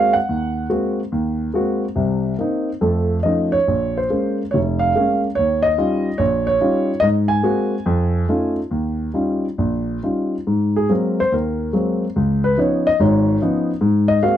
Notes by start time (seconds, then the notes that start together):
Already playing: G#3 A#3 C4 F#4 F5
0.13 F#5
0.29 D#2
0.70 G#3 A#3 C4 F#4
1.12 D#2
1.54 G#3 A#3 C4 F#4
1.95 C2 C3
2.39 A#3 C4 D#4
2.81 F2 A3
3.23 F3 A3 C#4 D#4 D#5
3.52 C#5
3.67 A#1
3.98 C5
4.10 G#3 A#3 C#4
4.51 F1 C#5
4.79 F5
4.95 G#3 A#3 C#4
5.35 D#2 C#5
5.62 D#5
5.78 G3 C#4 D#4 F4
6.18 A#1 C#5
6.47 C#5
6.61 G3 C#4 D#4 F4
7.00 G#2 D#5
7.28 G#5
7.43 G#3 A#3 C4 F#4
7.86 F2
8.29 A3 C#4 D#4 F4
8.71 D#2
9.14 G3 C#4 D#4 F4
9.58 A#1
10.03 G3 C#4 D#4 F4
10.47 G#2
10.76 G#4
10.89 F#3 G#3 A#3 C4 A#4
11.20 C5
11.32 D#2 A#4
11.73 F#3 G#3 A#3 C4
12.16 C#2
12.44 B4
12.57 F3 B3 C#4 D#4 C#5
12.87 D#5
13.00 G#1 G#2 C#5
13.42 F3 B3 C#4 D#4
13.81 G#2
14.08 D#5
14.23 G#3 A#3 C4 F#4 F5